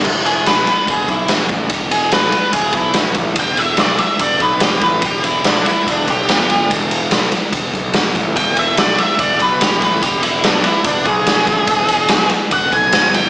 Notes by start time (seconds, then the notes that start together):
0.04 E1, kick, crash
0.26 G#4, ride
0.46 B1 B4, snare, ride
0.67 muted picked electric bass stroke, ride
0.87 E1 G#4, kick, ride
1.08 B1 E4, kick, ride
1.28 E1, snare, ride
1.49 A1, kick, ride
1.70 E1, kick, ride
1.91 G#4, ride
2.12 B1 B4, snare, ride
2.32 muted picked electric bass stroke, ride
2.53 E1 G#4, kick, ride
2.73 B1 E4, kick, ride
2.94 E1, snare, ride
3.14 A1, kick, ride
3.36 E1, kick, ride
3.40 G5
3.57 E5, ride
3.77 B1 D5, snare, ride
3.98 E5, muted picked electric bass stroke, ride
4.19 E1 D5, kick, ride
4.40 B1 B4, kick, ride
4.60 E1 G4, snare, ride
4.81 A1 B4, kick, ride
5.02 E1 G4, kick, ride
5.24 E4, ride
5.44 B1 D4, snare, ride
5.66 E4, muted picked electric bass stroke, ride
5.87 E1 D4, kick, ride
6.08 B1 G4, kick, ride
6.28 G1, snare, ride
6.50 ride
6.70 E1, kick, ride
6.91 ride
7.11 B1, snare, ride
7.32 muted picked electric bass stroke, ride
7.53 E1, kick, ride
7.74 B1, kick, ride
7.93 E1, snare, ride
8.15 A1, kick, ride
8.36 E1 G5, kick, ride
8.57 E5, ride
8.77 B1 D5, snare, ride
8.98 E5, muted picked electric bass stroke, ride
9.19 E1 D5, kick, ride
9.40 B1 B4, kick, ride
9.61 E1 G4, snare, ride
9.81 A1 B4, kick, ride
10.02 E1 G4, kick, ride
10.23 E4, ride
10.44 B1 D4, snare, ride
10.64 E4, muted picked electric bass stroke, ride
10.84 E1 D4, kick, ride
11.05 B1 G#4, kick, ride
11.27 E1, snare, ride
11.47 A1, kick, ride
11.67 E1, kick, ride
11.88 ride
12.08 B1, snare, ride
12.29 muted picked electric bass stroke, ride
12.51 E1 F#5, kick, ride
12.72 B1 G#5, kick, ride
12.92 G1, snare, ride
13.14 G5, ride